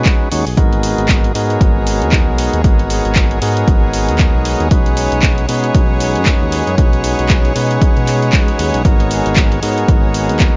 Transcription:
0.00 0.29 G#3 medium
0.00 0.29 C#4 medium
0.00 0.29 D#4 medium
0.00 0.29 F#4 medium
0.00 10.57 G#4 medium
0.00 0.29 B4 medium
0.00 0.57 C#5 medium
0.00 0.57 F#5 medium
0.05 kick loud
0.05 clap loud
0.05 closed hi-hat medium
0.31 0.44 D#2 loud
0.31 0.45 G#3 medium
0.31 0.45 C#4 medium
0.31 0.45 D#4 medium
0.31 0.45 F#4 medium
0.31 0.45 C#5 loud
0.31 open hi-hat loud
0.47 0.56 B1 medium
0.47 open hi-hat medium
0.57 0.94 G#1 loud
0.57 1.32 G#3 medium
0.57 1.32 B3 medium
0.57 1.32 D#4 medium
0.57 1.33 F#4 medium
0.57 1.33 A#4 loud
0.57 kick loud
0.57 closed hi-hat medium
0.73 closed hi-hat soft
0.83 open hi-hat loud
0.98 1.32 G#1 loud
0.98 closed hi-hat soft
1.09 kick loud
1.09 clap loud
1.09 closed hi-hat medium
1.24 closed hi-hat soft
1.34 1.57 G#2 medium
1.34 2.61 G#3 medium
1.34 2.62 B3 medium
1.34 2.62 D#4 medium
1.34 2.62 F#4 medium
1.34 2.62 A#4 medium
1.34 open hi-hat loud
1.44 10.57 C#5 medium
1.50 closed hi-hat soft
1.61 2.03 G#1 loud
1.61 kick loud
1.61 closed hi-hat medium
1.87 open hi-hat loud
2.02 2.22 D#2 medium
2.02 closed hi-hat soft
2.07 10.57 F#5 medium
2.12 kick loud
2.12 clap loud
2.12 closed hi-hat medium
2.28 2.48 B1 loud
2.38 open hi-hat loud
2.53 2.62 D#2 loud
2.53 closed hi-hat soft
2.64 3.01 G#1 medium
2.64 3.39 G#3 medium
2.64 3.39 B3 medium
2.64 3.39 D#4 medium
2.64 3.39 F#4 medium
2.64 3.40 A#4 medium
2.64 kick loud
2.64 closed hi-hat medium
2.79 closed hi-hat soft
2.90 open hi-hat loud
3.05 3.39 G#1 loud
3.05 closed hi-hat medium
3.16 kick loud
3.16 clap loud
3.16 closed hi-hat medium
3.31 closed hi-hat soft
3.41 3.64 G#2 medium
3.41 4.68 G#3 medium
3.41 4.68 B3 medium
3.41 4.69 D#4 medium
3.41 4.69 F#4 medium
3.41 4.69 A#4 loud
3.41 open hi-hat loud
3.57 closed hi-hat medium
3.68 4.10 G#1 loud
3.68 kick loud
3.68 closed hi-hat medium
3.93 open hi-hat loud
4.09 4.29 D#2 medium
4.09 closed hi-hat soft
4.19 kick loud
4.19 clap loud
4.19 closed hi-hat medium
4.35 4.55 B1 loud
4.45 open hi-hat loud
4.60 4.69 D#2 loud
4.60 closed hi-hat medium
4.70 5.08 B1 loud
4.70 5.46 G#3 medium
4.70 5.46 C#4 medium
4.70 5.46 D#4 medium
4.70 5.46 F#4 medium
4.70 5.46 B4 medium
4.70 kick loud
4.70 closed hi-hat medium
4.86 closed hi-hat soft
4.97 open hi-hat loud
5.12 5.46 B1 loud
5.12 closed hi-hat medium
5.22 kick loud
5.22 clap loud
5.22 closed hi-hat medium
5.38 closed hi-hat soft
5.48 5.71 B2 medium
5.48 6.75 G#3 medium
5.48 6.75 C#4 medium
5.48 6.75 D#4 medium
5.48 6.76 F#4 medium
5.48 6.76 B4 medium
5.48 open hi-hat loud
5.64 closed hi-hat medium
5.75 6.17 B1 loud
5.75 kick loud
5.75 closed hi-hat medium
6.00 open hi-hat loud
6.15 6.36 F#2 medium
6.15 closed hi-hat medium
6.26 kick loud
6.26 clap loud
6.26 closed hi-hat medium
6.41 6.62 D#2 loud
6.52 open hi-hat loud
6.67 6.76 F#2 loud
6.67 closed hi-hat medium
6.78 7.15 B1 medium
6.78 7.53 G#3 medium
6.78 7.53 C#4 medium
6.78 7.53 D#4 medium
6.78 7.53 F#4 medium
6.78 7.53 B4 medium
6.78 kick loud
6.78 closed hi-hat medium
6.93 closed hi-hat soft
7.04 open hi-hat loud
7.19 7.53 B1 loud
7.19 closed hi-hat medium
7.29 kick loud
7.29 clap loud
7.29 closed hi-hat medium
7.45 closed hi-hat soft
7.55 7.78 B2 medium
7.55 8.82 G#3 medium
7.55 8.82 C#4 medium
7.55 8.82 D#4 medium
7.55 8.83 F#4 medium
7.55 8.83 B4 medium
7.55 open hi-hat loud
7.71 closed hi-hat medium
7.82 kick loud
7.82 closed hi-hat medium
7.82 swell medium
7.97 8.30 B2 medium
7.97 closed hi-hat soft
8.07 clap soft
8.07 open hi-hat loud
8.22 closed hi-hat medium
8.33 kick loud
8.33 clap loud
8.33 closed hi-hat medium
8.48 closed hi-hat soft
8.59 8.72 D#2 loud
8.59 open hi-hat loud
8.74 8.83 B1 medium
8.74 closed hi-hat medium
8.84 9.22 G#1 loud
8.84 9.60 G#3 medium
8.84 9.60 B3 medium
8.84 9.60 D#4 medium
8.84 9.60 F#4 medium
8.84 9.60 A#4 loud
8.84 kick loud
8.84 closed hi-hat medium
9.00 closed hi-hat soft
9.11 open hi-hat loud
9.26 9.60 G#1 loud
9.26 closed hi-hat medium
9.36 kick loud
9.36 clap loud
9.36 closed hi-hat medium
9.52 closed hi-hat soft
9.62 9.85 G#2 medium
9.62 10.57 G#3 medium
9.62 10.57 B3 medium
9.62 10.57 D#4 medium
9.62 10.57 F#4 medium
9.62 10.57 A#4 medium
9.62 open hi-hat loud
9.78 closed hi-hat medium
9.88 10.31 G#1 loud
9.88 kick loud
9.88 closed hi-hat medium
10.14 open hi-hat loud
10.29 10.50 D#2 medium
10.29 closed hi-hat medium
10.40 kick loud
10.40 clap loud
10.40 closed hi-hat medium

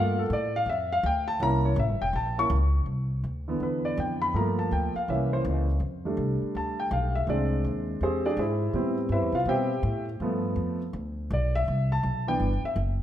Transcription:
0.00 0.29 G2 medium
0.00 0.22 A3 medium
0.00 0.22 A#3 medium
0.00 0.23 F4 medium
0.00 0.18 F5 medium
0.19 0.31 A4 medium
0.30 0.65 A2 medium
0.30 0.55 D5 medium
0.56 0.68 F5 medium
0.66 1.02 F2 medium
0.66 0.91 E5 medium
0.92 1.05 F5 medium
1.03 1.39 D2 loud
1.03 1.28 G5 medium
1.28 1.41 A5 medium
1.40 1.75 C2 medium
1.40 1.68 A#3 medium
1.40 1.68 C#4 medium
1.40 1.69 E4 medium
1.40 1.65 A#5 loud
1.65 1.78 C#5 medium
1.76 1.89 A1 loud
1.76 2.01 E5 medium
1.89 2.00 G1 medium
2.01 2.13 E1 medium
2.01 2.14 G5 medium
2.13 2.49 A#1 medium
2.13 2.38 A5 medium
2.38 2.50 A#3 soft
2.38 2.50 C#4 soft
2.38 2.50 E4 soft
2.38 2.47 C#6 loud
2.50 2.85 C#2 loud
2.86 3.22 C2 medium
3.24 3.59 D2 medium
3.48 4.30 D3 soft
3.48 4.31 E3 soft
3.48 4.31 B3 medium
3.60 3.96 E2 medium
3.60 3.85 B4 medium
3.85 3.98 D5 medium
3.97 4.33 F2 medium
3.97 4.21 G5 medium
4.22 4.34 B5 medium
4.34 4.70 G2 medium
4.34 4.91 F3 medium
4.34 4.92 A3 soft
4.34 4.92 A#3 medium
4.34 4.58 A#5 medium
4.59 4.71 A5 medium
4.71 4.93 D2 medium
4.71 4.94 G5 medium
4.95 5.08 F5 medium
4.95 muted upright bass stroke soft
5.08 5.43 C2 medium
5.08 5.65 E3 medium
5.08 5.65 A#3 soft
5.08 5.66 C#4 medium
5.08 5.31 E5 medium
5.33 5.40 C5 medium
5.45 5.79 C#2 loud
5.80 6.16 F2 medium
6.05 7.24 G3 soft
6.05 7.24 A3 soft
6.05 7.25 D4 soft
6.17 6.39 C2 medium
6.42 muted upright bass stroke soft
6.55 6.90 D2 medium
6.55 6.78 A5 medium
6.80 6.91 G5 medium
6.91 7.26 B1 loud
6.91 7.14 F5 medium
7.15 7.28 E5 medium
7.27 7.63 C2 medium
7.27 8.70 G#3 medium
7.27 8.02 C4 soft
7.27 8.24 D4 medium
7.27 7.63 D5 medium
7.65 8.00 D#2 medium
8.01 8.36 E2 medium
8.01 8.25 C4 medium
8.01 8.25 G4 medium
8.01 8.25 G#4 medium
8.01 8.25 C5 medium
8.26 8.38 D4 medium
8.26 8.38 G4 medium
8.26 8.38 G#4 medium
8.26 8.38 D5 medium
8.37 8.73 G#2 medium
8.37 8.95 E4 medium
8.37 8.73 G#4 medium
8.37 8.94 C5 medium
8.37 8.94 E5 medium
8.73 9.08 A2 medium
8.73 9.31 G3 soft
8.73 9.31 B3 soft
8.73 9.32 C4 medium
9.09 9.21 G2 medium
9.09 9.34 E4 medium
9.09 9.34 B4 medium
9.09 9.34 C5 medium
9.09 9.34 E5 medium
9.21 9.32 E2 medium
9.32 9.45 C2 medium
9.32 9.47 F4 medium
9.32 9.47 F5 medium
9.45 9.82 B2 medium
9.45 9.68 G3 soft
9.45 9.69 B3 soft
9.45 9.69 C4 medium
9.45 10.04 G4 medium
9.45 10.04 C5 medium
9.45 10.04 G5 medium
9.49 10.04 E5 medium
9.83 10.19 A2 loud
10.20 10.55 G2 medium
10.20 10.78 F3 soft
10.20 10.78 A3 soft
10.20 10.78 B3 medium
10.56 10.92 F2 medium
10.93 11.29 D2 medium
11.30 11.66 B1 loud
11.30 11.55 D5 medium
11.55 11.89 E5 medium
11.68 12.03 C2 medium
11.92 12.25 A5 medium
12.03 12.39 B1 medium
12.27 12.49 E3 soft
12.27 12.49 B3 soft
12.27 12.49 D4 medium
12.27 12.62 G5 medium
12.40 12.62 G1 medium
12.63 12.77 E5 medium
12.63 muted upright bass stroke soft
12.76 13.03 F#1 loud

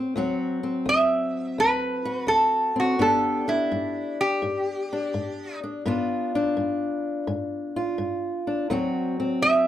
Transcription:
0.00 0.11 D2 medium
0.00 0.16 F#3 medium
0.00 0.14 C4 medium
0.00 0.15 F#4 medium
0.16 0.82 D2 medium
0.16 2.99 F#3 medium
0.16 0.62 C4 medium
0.16 2.04 F#4 medium
0.63 2.75 C4 medium
0.86 1.53 D2 medium
0.86 1.57 E5 medium
1.58 2.25 D2 medium
1.58 2.28 B4 loud
2.05 2.97 F#4 medium
2.27 2.95 D2 medium
2.27 2.75 A4 medium
2.76 2.97 C4 medium
2.76 3.01 F#4 medium
2.99 3.66 G2 medium
2.99 5.82 B3 medium
2.99 3.47 D4 medium
2.99 5.83 G4 medium
2.99 3.48 A4 medium
3.48 4.92 D4 medium
3.48 4.18 E4 medium
3.71 4.38 G2 medium
4.21 5.59 G4 loud
4.42 5.09 G2 medium
4.93 5.63 D4 medium
5.14 5.81 G2 medium
5.63 5.87 D4 medium
5.85 6.52 G2 medium
5.85 8.68 B3 medium
5.85 6.35 D4 medium
5.85 7.75 F4 medium
6.35 8.47 D4 medium
6.57 7.23 G2 medium
7.27 7.94 G2 medium
7.76 8.68 F4 medium
7.98 8.65 G2 medium
8.47 8.71 D4 medium
8.70 9.37 D2 medium
8.70 9.68 F#3 medium
8.70 9.19 C4 medium
8.70 9.68 F#4 medium
9.20 9.68 C4 medium
9.42 9.68 D2 medium
9.42 9.68 E5 loud

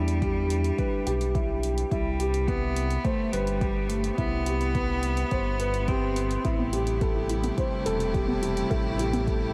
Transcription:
0.00 0.71 E2 medium
0.00 1.63 G3 medium
0.00 1.93 D4 medium
0.00 1.35 E4 medium
0.00 0.22 G4 medium
0.00 0.78 B4 medium
0.08 closed hi-hat soft
0.22 0.49 G4 medium
0.22 kick medium
0.22 closed hi-hat soft
0.50 closed hi-hat medium
0.64 closed hi-hat soft
0.78 1.05 B4 medium
0.78 kick loud
0.78 closed hi-hat soft
1.06 1.84 B1 medium
1.06 1.23 G4 medium
1.06 closed hi-hat medium
1.21 closed hi-hat soft
1.35 1.62 E4 medium
1.35 kick loud
1.35 closed hi-hat soft
1.63 closed hi-hat medium
1.78 closed hi-hat soft
1.91 2.98 C2 medium
1.91 2.49 G3 medium
1.91 2.08 E4 medium
1.91 kick loud
1.91 closed hi-hat soft
2.19 2.47 G4 medium
2.19 closed hi-hat medium
2.34 closed hi-hat soft
2.48 3.06 B3 medium
2.48 2.75 B4 medium
2.48 kick loud
2.48 closed hi-hat soft
2.76 closed hi-hat medium
2.91 closed hi-hat soft
3.04 3.34 A3 medium
3.04 3.31 C5 medium
3.04 kick loud
3.04 closed hi-hat soft
3.32 4.11 G1 medium
3.32 3.90 G3 medium
3.32 3.49 B4 medium
3.32 closed hi-hat medium
3.47 closed hi-hat soft
3.61 3.88 G4 medium
3.61 kick loud
3.61 closed hi-hat soft
3.88 4.16 A3 medium
3.88 closed hi-hat medium
4.04 closed hi-hat soft
4.16 5.24 C2 medium
4.16 5.89 B3 loud
4.16 4.34 E4 medium
4.16 kick loud
4.16 closed hi-hat soft
4.46 4.73 G4 medium
4.46 closed hi-hat medium
4.61 closed hi-hat soft
4.75 5.02 B4 medium
4.75 kick loud
4.75 closed hi-hat soft
5.03 closed hi-hat medium
5.17 closed hi-hat soft
5.31 6.38 G1 medium
5.31 5.58 C5 medium
5.31 kick loud
5.31 closed hi-hat soft
5.60 5.76 B4 medium
5.60 closed hi-hat medium
5.74 closed hi-hat soft
5.88 6.44 C4 medium
5.88 6.15 G4 medium
5.88 kick loud
5.88 closed hi-hat soft
6.16 closed hi-hat medium
6.31 closed hi-hat soft
6.45 7.51 A1 medium
6.45 9.53 C3 medium
6.45 9.53 G3 medium
6.45 9.53 A3 medium
6.45 6.61 E4 medium
6.45 6.54 E4 medium
6.45 9.53 E4 medium
6.45 9.53 G4 medium
6.45 kick loud
6.45 closed hi-hat soft
6.59 6.72 B3 loud
6.73 6.86 E4 medium
6.73 7.00 G4 medium
6.73 closed hi-hat medium
6.87 closed hi-hat soft
7.01 7.28 A4 medium
7.01 7.15 A4 medium
7.01 kick loud
7.01 closed hi-hat soft
7.16 7.21 E4 medium
7.29 7.39 E4 medium
7.29 closed hi-hat medium
7.44 7.57 B3 loud
7.44 closed hi-hat soft
7.57 7.71 E4 medium
7.57 7.85 C5 medium
7.57 kick medium
7.57 closed hi-hat soft
7.86 8.64 E1 medium
7.86 7.99 A4 medium
7.86 8.02 A4 medium
7.86 closed hi-hat medium
8.00 8.06 E4 medium
8.00 closed hi-hat soft
8.14 8.24 E4 medium
8.14 8.41 G4 medium
8.14 kick loud
8.14 closed hi-hat soft
8.28 8.42 B3 medium
8.42 8.56 E4 medium
8.42 closed hi-hat medium
8.57 closed hi-hat soft
8.70 9.53 A1 loud
8.70 8.87 E4 medium
8.70 8.84 A4 loud
8.70 kick loud
8.70 closed hi-hat soft
8.85 8.91 E4 medium
8.99 9.09 E4 medium
8.99 9.26 G4 medium
8.99 closed hi-hat medium
9.13 9.27 B3 loud
9.13 closed hi-hat soft
9.27 9.41 E4 medium
9.27 9.53 A4 medium
9.27 kick medium
9.27 closed hi-hat soft

